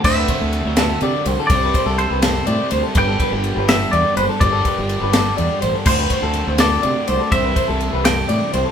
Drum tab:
CC |x-----|------|------|------|
RD |-xxxxx|xxxxxx|xxxxxx|xxxxxx|
SD |---o--|---o--|---o--|---o--|
BD |oo----|oo----|oo----|oo----|

CC |x-----|------|
RD |-xxxxx|xxxxxx|
SD |---o--|---o--|
BD |oo----|oo----|